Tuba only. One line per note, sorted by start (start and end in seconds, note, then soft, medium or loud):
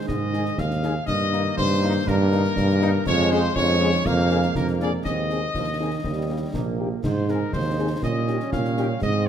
0.08 0.50 G#2 medium
0.57 0.99 D#2 medium
1.07 1.49 G2 medium
1.57 1.98 G2 loud
2.07 2.48 G2 loud
2.56 2.98 G2 loud
3.06 3.47 F2 loud
3.55 3.97 F2 loud
4.05 4.47 F2 loud
4.54 4.96 F2 medium
5.05 5.46 D#2 medium
5.54 5.96 D#2 medium
6.04 6.45 D#2 medium
6.54 6.95 A#1 medium
7.03 7.45 G#2 medium
7.53 7.94 D#2 medium
8.03 8.40 A#2 medium
8.52 8.94 A#2 medium
9.02 9.29 G#2 loud